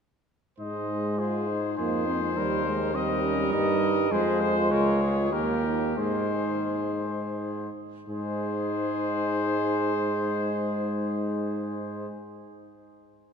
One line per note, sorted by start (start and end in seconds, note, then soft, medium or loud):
0.59 1.74 G#2 soft
0.59 1.74 G#3 medium
0.59 1.20 D#4 soft
0.59 1.21 C5 soft
0.59 1.21 D#5 soft
1.18 1.49 F4 medium
1.18 1.77 G#4 soft
1.18 1.77 C5 soft
1.48 2.35 D#4 medium
1.78 2.38 F2 medium
1.78 2.06 A#3 medium
1.78 2.39 G#4 medium
1.78 2.97 C5 medium
2.07 2.20 C4 medium
2.36 3.55 D#2 medium
2.36 2.65 G3 medium
2.36 2.96 D#4 medium
2.36 2.94 A#4 medium
2.66 2.95 G#3 medium
2.94 4.12 G3 medium
2.94 3.26 C4 medium
2.94 4.13 A#4 medium
2.94 3.53 D#5 medium
3.24 3.54 C#4 medium
3.53 4.11 G2 medium
3.53 4.10 D#4 medium
3.53 4.13 D#5 medium
4.11 4.73 F2 medium
4.11 5.31 G#3 loud
4.11 5.34 F4 medium
4.11 4.42 G#4 medium
4.11 4.72 C5 medium
4.41 4.74 C5 medium
4.71 5.34 C#2 medium
4.71 5.03 A#4 medium
4.71 5.34 C#5 medium
5.01 5.35 G#4 medium
5.32 5.97 D#2 medium
5.32 5.98 A#3 medium
5.32 5.66 G4 medium
5.32 6.00 G4 medium
5.32 5.97 A#4 medium
5.64 5.97 D#4 medium
5.97 7.69 G#2 soft
5.97 7.36 G#3 medium
5.97 7.69 D#4 soft
5.97 7.73 G#4 soft
5.97 7.69 C5 soft
8.08 12.07 G#2 medium
8.08 12.06 G#3 medium
8.08 12.06 D#4 medium
8.08 12.08 G#4 medium
8.08 12.07 C5 medium